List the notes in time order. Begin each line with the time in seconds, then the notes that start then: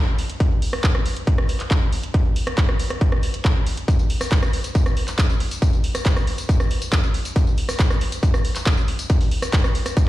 0.19 open hi-hat
0.30 closed hi-hat
0.40 kick, closed hi-hat
0.62 open hi-hat
0.73 cross-stick, open hi-hat
0.84 kick, clap, closed hi-hat
0.95 cross-stick
1.06 open hi-hat
1.17 closed hi-hat
1.27 kick, closed hi-hat
1.38 cross-stick
1.49 open hi-hat
1.60 clap, closed hi-hat
1.71 kick, clap, closed hi-hat
1.93 open hi-hat
2.03 closed hi-hat
2.14 kick, closed hi-hat
2.36 open hi-hat
2.47 cross-stick, closed hi-hat
2.58 kick, clap, closed hi-hat
2.69 cross-stick
2.80 open hi-hat
2.90 cross-stick, closed hi-hat
3.01 kick, closed hi-hat
3.12 cross-stick
3.23 open hi-hat
3.34 closed hi-hat
3.45 kick, clap, closed hi-hat
3.66 open hi-hat
3.77 closed hi-hat
3.88 kick, closed hi-hat, tambourine
3.99 tambourine
4.10 open hi-hat
4.21 cross-stick, open hi-hat, tambourine
4.32 kick, clap, closed hi-hat, tambourine
4.43 cross-stick, tambourine
4.53 open hi-hat
4.64 closed hi-hat, tambourine
4.75 kick, closed hi-hat, tambourine
4.86 cross-stick, tambourine
4.97 open hi-hat
5.08 clap, closed hi-hat, tambourine
5.18 kick, clap, closed hi-hat, tambourine
5.30 tambourine
5.40 open hi-hat
5.51 closed hi-hat, tambourine
5.62 kick, closed hi-hat, tambourine
5.73 tambourine
5.84 open hi-hat
5.95 cross-stick, closed hi-hat, tambourine
6.05 kick, clap, closed hi-hat, tambourine
6.16 cross-stick, tambourine
6.27 open hi-hat
6.38 closed hi-hat, tambourine
6.49 kick, closed hi-hat, tambourine
6.60 cross-stick, tambourine
6.71 open hi-hat
6.82 closed hi-hat, tambourine
6.92 kick, clap, closed hi-hat, tambourine
7.03 tambourine
7.14 open hi-hat
7.25 closed hi-hat, tambourine
7.36 kick, closed hi-hat, tambourine
7.47 tambourine
7.58 open hi-hat
7.69 cross-stick, open hi-hat, tambourine
7.79 kick, clap, closed hi-hat, tambourine
7.90 cross-stick, tambourine
8.01 open hi-hat
8.12 closed hi-hat, tambourine
8.23 kick, closed hi-hat, tambourine
8.34 cross-stick, tambourine
8.45 open hi-hat
8.56 clap, closed hi-hat, tambourine
8.66 kick, clap, closed hi-hat, tambourine
8.77 tambourine
8.88 open hi-hat
8.99 closed hi-hat, tambourine
9.10 kick, closed hi-hat, tambourine
9.21 open hi-hat, tambourine
9.31 open hi-hat
9.42 cross-stick, closed hi-hat, tambourine
9.53 kick, clap, closed hi-hat, tambourine
9.64 cross-stick, tambourine
9.75 open hi-hat
9.86 cross-stick, closed hi-hat, tambourine
9.97 kick, closed hi-hat, tambourine